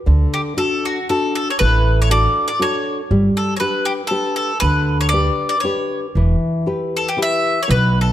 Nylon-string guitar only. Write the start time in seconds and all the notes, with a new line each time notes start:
0.06 D3
0.57 D4 F#4 A4
1.10 D4 F#4 A4
1.60 A3
2.10 D4 F#4 A4
2.59 D4 F#4 A4
3.11 G3
3.60 D4 G4 B4
4.11 D4 G4 B4
4.63 D3
5.13 D4 G4 B4
5.63 D4 G4 B4
6.17 E3
6.66 E4 G4 B4
7.17 E4 G4 B4
7.68 B2